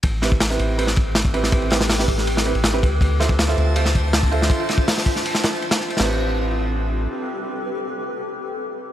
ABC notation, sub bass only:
X:1
M:4/4
L:1/16
Q:1/4=161
K:Am
V:1 name="Sub bass" clef=bass
A,,,6 A,,,8- A,,,2- | A,,,6 A,,,4- A,,, A,,,3 D,,2 | D,,6 D,,8- D,,2 | z16 |
A,,,12 z4 | z16 |]